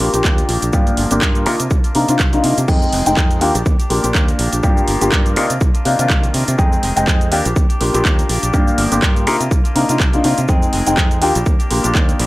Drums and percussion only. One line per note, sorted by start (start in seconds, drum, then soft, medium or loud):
0.00 open hi-hat loud
0.14 closed hi-hat medium
0.14 cabasa medium
0.25 kick loud
0.25 clap loud
0.25 cabasa medium
0.38 closed hi-hat medium
0.38 cabasa soft
0.49 open hi-hat loud
0.62 closed hi-hat medium
0.62 cabasa medium
0.73 kick loud
0.73 cabasa medium
0.87 closed hi-hat soft
0.87 cabasa soft
0.97 open hi-hat loud
1.11 closed hi-hat medium
1.11 cabasa medium
1.22 kick loud
1.22 clap loud
1.22 cabasa medium
1.35 closed hi-hat soft
1.35 cabasa soft
1.46 open hi-hat loud
1.60 closed hi-hat medium
1.60 cabasa medium
1.71 kick loud
1.71 cabasa medium
1.84 closed hi-hat medium
1.84 cabasa soft
1.95 open hi-hat loud
2.09 closed hi-hat medium
2.09 cabasa medium
2.19 kick loud
2.19 clap loud
2.19 cabasa medium
2.33 closed hi-hat medium
2.33 cabasa soft
2.44 open hi-hat loud
2.58 closed hi-hat medium
2.58 cabasa medium
2.68 kick loud
2.68 crash medium
2.68 cabasa medium
2.82 cabasa soft
2.93 open hi-hat loud
3.06 closed hi-hat medium
3.06 cabasa medium
3.17 kick loud
3.17 clap loud
3.17 cabasa medium
3.31 closed hi-hat soft
3.31 cabasa soft
3.41 open hi-hat loud
3.55 closed hi-hat medium
3.55 cabasa medium
3.66 kick loud
3.66 cabasa medium
3.80 closed hi-hat medium
3.80 cabasa soft
3.90 open hi-hat loud
4.04 closed hi-hat medium
4.04 cabasa medium
4.15 kick loud
4.15 clap loud
4.15 cabasa medium
4.28 closed hi-hat medium
4.28 cabasa soft
4.39 open hi-hat loud
4.53 closed hi-hat medium
4.53 cabasa medium
4.63 kick loud
4.63 cabasa medium
4.77 cabasa soft
4.88 open hi-hat loud
5.01 closed hi-hat medium
5.01 cabasa medium
5.12 kick loud
5.12 clap loud
5.12 cabasa soft
5.26 closed hi-hat soft
5.26 cabasa soft
5.36 open hi-hat loud
5.50 closed hi-hat medium
5.50 cabasa medium
5.61 kick loud
5.61 cabasa medium
5.75 closed hi-hat medium
5.75 cabasa soft
5.85 open hi-hat loud
5.99 closed hi-hat medium
5.99 cabasa medium
6.10 kick loud
6.10 clap loud
6.10 cabasa medium
6.23 closed hi-hat medium
6.23 cabasa soft
6.34 open hi-hat loud
6.48 closed hi-hat medium
6.48 cabasa medium
6.59 kick loud
6.59 cabasa medium
6.72 cabasa soft
6.83 open hi-hat loud
6.97 closed hi-hat medium
6.97 cabasa medium
7.07 kick loud
7.07 clap loud
7.07 cabasa medium
7.21 closed hi-hat soft
7.21 cabasa soft
7.32 open hi-hat loud
7.45 closed hi-hat medium
7.45 cabasa medium
7.56 kick loud
7.56 cabasa medium
7.70 closed hi-hat medium
7.70 cabasa soft
7.81 open hi-hat loud
7.94 closed hi-hat medium
7.94 cabasa medium
8.05 kick loud
8.05 clap loud
8.05 cabasa medium
8.19 closed hi-hat medium
8.19 cabasa soft
8.29 open hi-hat loud
8.43 closed hi-hat medium
8.43 cabasa medium
8.54 kick loud
8.54 cabasa medium
8.68 cabasa soft
8.78 open hi-hat loud
8.92 closed hi-hat medium
8.92 cabasa medium
9.03 kick loud
9.03 clap loud
9.03 cabasa medium
9.16 closed hi-hat soft
9.16 cabasa soft
9.27 open hi-hat loud
9.41 closed hi-hat medium
9.41 cabasa medium
9.51 kick loud
9.51 cabasa medium
9.65 closed hi-hat medium
9.65 cabasa soft
9.76 open hi-hat loud
9.89 closed hi-hat medium
9.89 cabasa medium
10.00 kick loud
10.00 clap loud
10.00 cabasa medium
10.13 closed hi-hat soft
10.13 cabasa soft
10.24 open hi-hat loud
10.38 closed hi-hat medium
10.38 cabasa medium
10.48 kick loud
10.48 cabasa medium
10.62 cabasa soft
10.73 open hi-hat loud
10.87 closed hi-hat medium
10.87 cabasa medium
10.97 kick loud
10.97 clap loud
10.97 cabasa medium
11.11 closed hi-hat soft
11.11 cabasa soft
11.22 open hi-hat loud
11.35 closed hi-hat medium
11.35 cabasa medium
11.46 kick loud
11.46 cabasa medium
11.60 closed hi-hat medium
11.60 cabasa soft
11.71 open hi-hat loud
11.84 closed hi-hat medium
11.84 cabasa medium
11.95 kick loud
11.95 clap loud
11.95 cabasa medium
12.09 closed hi-hat soft
12.09 cabasa soft
12.20 open hi-hat loud